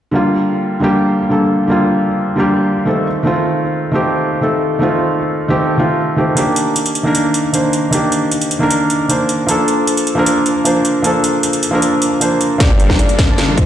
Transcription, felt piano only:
0.11 D3 G3 A#3
0.15 F4
0.80 D3 G3 A#3
0.84 G4
1.29 D3 G3 A#3 A4
1.67 D3 G3 A#3 F4
2.36 D3 G3 A#3 G4
2.85 D#3 A3 C4 A4
3.23 D#3 A3 C4 F4
3.91 D#3 A3 C4 G4
4.41 D#3 A3 C4 A4
4.79 D#3 A3 C4 F4
5.48 D#3 A3 C4 G4
5.77 D#3 A3 C4 F4
6.16 D#3 A3 C4 G4
6.35 D#3 A#3 D4
6.39 G4
7.03 D#3 A#3 D4
7.07 A#4
7.53 D#3 A#3 D4 C5
7.91 D#3 A#3 D4
7.95 G4
8.59 D#3 A#3 D4
8.63 A#4
9.09 D#3 A#3 D4 C5
9.47 F3 A#3 D4 A4
10.15 F3 A#3 D4
10.19 A#4
10.64 F3 A#3 D4 C5
11.02 F3 A#3 D4
11.06 A4
11.71 F3 A#3 D4 A#4
12.20 F3 A#3 D4 C5
12.58 F3 A#3 D4
12.62 G4
13.27 F3 A#3 D4
13.31 A5

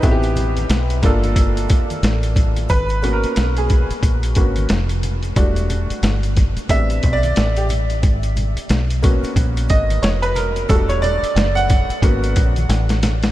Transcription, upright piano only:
Already playing: D#4 B4
0.03 B3 C4 E4 F#4
0.11 G4
1.02 A#3 D4 F4 A4
2.70 B4
3.02 A#3 B3 C#4 F#4
3.13 A#4
3.58 G#4
4.36 A#3 B3 C#4 F#4
5.36 G3 A3 D4 F#4
6.70 G3 B3 C4 D4 E5
7.13 D5
7.57 G4
9.02 A#3 B3 C#4 F#4
9.70 D#5
10.02 C#5
10.22 B4
10.35 A#4
10.69 G3 A3 D4 F#4 A4
10.89 C#5
11.02 D5
11.55 F#5
12.03 A#3 B3 C#4 F#4

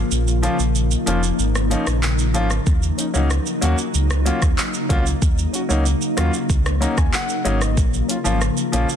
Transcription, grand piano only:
0.43 F3 A#3 C#4 F4
1.06 F3 A#3 C#4 F4
1.70 F3 A#3 C#4 D#4
2.34 F3 A#3 C#4 F4
2.98 C#4 D#4
3.14 F#3 A#3 C#4 D#4
3.61 F#3 A#3 C#4 F#4
4.25 F#3 A#3 C#4 F4
4.89 F#3 A#3 C#4 F4
5.53 C#4 F#4
5.69 F#3 A#3 C#4 D#4
6.17 F#3 A#3 C#4 F4
6.81 F#3 A#3 C#4 D#4 A#5
6.97 G#5
7.14 F#5
7.45 F#3 A#3 C#4 D#4 D#5
8.08 C#4 F4
8.24 F3 A#3 C#4 F4
8.72 F3 A#3 C#4 F4

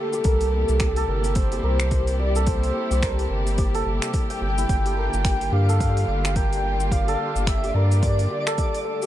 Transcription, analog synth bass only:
0.25 C2
0.69 C2
1.08 G1
1.63 C2
2.91 C2
3.30 G1
3.86 G1
4.41 G1
4.69 G1
5.14 G1
5.52 G2
6.08 G1
7.36 G1
7.75 G2

